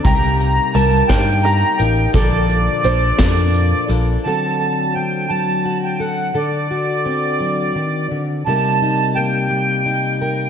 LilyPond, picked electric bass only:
\new Staff \with { instrumentName = "Picked electric bass" } { \clef bass \time 6/8 \key d \phrygian \tempo 4. = 57 c,4 c,8 g,4 a,,8 | bes,,4 bes,,8 f,4 bes,,8 | r2. | r2. |
r2. | }